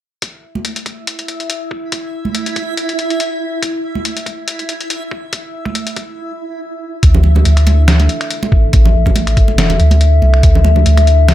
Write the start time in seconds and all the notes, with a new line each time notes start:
0.22 E4 E5, kick, closed hi-hat
0.55 high conga
0.65 closed hi-hat
0.76 closed hi-hat
0.86 kick, closed hi-hat
1.07 closed hi-hat
1.19 closed hi-hat
1.28 closed hi-hat
1.40 closed hi-hat
1.50 closed hi-hat
1.71 kick
1.92 kick, closed hi-hat
2.25 high conga
2.35 closed hi-hat
2.46 closed hi-hat
2.56 kick, closed hi-hat
2.77 closed hi-hat
2.89 closed hi-hat
2.99 closed hi-hat
3.10 closed hi-hat
3.20 closed hi-hat
3.62 kick, closed hi-hat
3.95 high conga
4.05 closed hi-hat
4.17 closed hi-hat
4.26 kick, closed hi-hat
4.48 closed hi-hat
4.59 closed hi-hat
4.69 closed hi-hat
4.81 closed hi-hat
4.90 closed hi-hat
5.11 kick
5.33 kick, closed hi-hat
5.65 kick, high conga
5.75 closed hi-hat
5.87 closed hi-hat
5.96 kick, closed hi-hat
7.03 D2 D4 A4 E5, kick, closed hi-hat
7.15 low conga
7.23 muted conga
7.35 high conga, low conga
7.45 D2, closed hi-hat
7.57 finger snap, closed hi-hat
7.67 closed hi-hat, muted conga
7.88 finger snap, snare, closed hi-hat
8.00 closed hi-hat, muted conga
8.09 closed hi-hat
8.21 finger snap, closed hi-hat
8.31 closed hi-hat
8.43 muted conga
8.52 A1, kick
8.73 kick, closed hi-hat, muted conga
8.85 low conga
9.06 kick, high conga, low conga
9.16 closed hi-hat, muted conga
9.27 finger snap, closed hi-hat
9.37 kick, closed hi-hat
9.48 muted conga
9.58 snare, closed hi-hat
9.70 closed hi-hat, low conga
9.80 D2, closed hi-hat
9.91 closed hi-hat, muted conga
10.01 closed hi-hat
10.22 C2, muted conga
10.34 finger snap
10.43 D2, kick, closed hi-hat
10.55 low conga
10.64 muted conga
10.76 high conga, low conga
10.86 D2, closed hi-hat
10.97 finger snap, closed hi-hat, muted conga
11.07 closed hi-hat
11.28 finger snap, snare, closed hi-hat